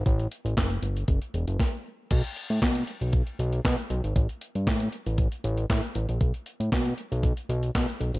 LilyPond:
<<
  \new Staff \with { instrumentName = "Analog synth bass" } { \clef bass \time 4/4 \key g \lydian \tempo 4 = 117 a,,8 r16 a,,16 fis,,8 g,,8 fis,,16 r16 e,,16 fis,,16 r4 | b,,16 r8 a,16 b,8 r16 b,,8 r16 b,,8 b,16 r16 b,,16 gis,,16 | a,,16 r8 g,16 a,8 r16 a,,8 r16 a,,8 a,16 r16 a,,16 bes,,16 | b,,16 r8 a,16 b,8 r16 b,,8 r16 b,,8 b,16 r16 b,,16 gis,,16 | }
  \new DrumStaff \with { instrumentName = "Drums" } \drummode { \time 4/4 <hh bd>16 hh16 hh16 hh16 <hc hh bd sn>16 hh16 hh16 hh16 <hh bd>16 hh16 hh16 hh16 <bd sn>4 | <cymc hh bd>16 hh16 hh16 hh16 <hc hh bd sn>16 hh16 hh16 hh16 <hh bd>16 hh16 hh16 hh16 <hc hh bd sn>16 hh16 hh16 hh16 | <hh bd>16 hh16 hh16 hh16 <hc hh bd sn>16 hh16 hh16 hh16 <hh bd>16 hh16 hh16 hh16 <hc hh bd sn>16 hh16 hh16 hh16 | <hh bd>16 hh16 hh16 hh16 <hc hh bd sn>16 hh16 hh16 hh16 <hh bd>16 hh16 hh16 hh16 <hc hh bd sn>16 hh16 hh16 hh16 | }
>>